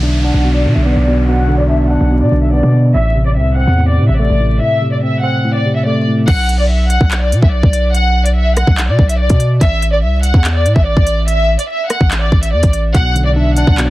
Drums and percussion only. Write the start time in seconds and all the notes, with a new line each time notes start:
6.28 kick, closed hi-hat, crash
6.49 closed hi-hat
6.90 closed hi-hat
7.01 kick
7.11 clap, closed hi-hat
7.32 closed hi-hat
7.42 kick
7.63 kick
7.73 closed hi-hat
7.95 closed hi-hat
8.26 closed hi-hat
8.57 cross-stick, closed hi-hat
8.67 kick
8.78 clap, closed hi-hat
8.99 kick
9.09 closed hi-hat
9.29 kick, closed hi-hat
9.40 closed hi-hat
9.61 kick, closed hi-hat
9.82 closed hi-hat
10.23 closed hi-hat
10.34 kick
10.44 clap, closed hi-hat
10.66 closed hi-hat
10.76 kick
10.97 kick
11.07 closed hi-hat
11.28 closed hi-hat
11.59 closed hi-hat
11.90 cross-stick, closed hi-hat
12.01 kick
12.11 clap, closed hi-hat
12.32 kick
12.43 closed hi-hat
12.63 kick, closed hi-hat
12.73 closed hi-hat
12.94 kick, closed hi-hat
13.16 closed hi-hat
13.57 closed hi-hat
13.67 kick
13.78 clap, closed hi-hat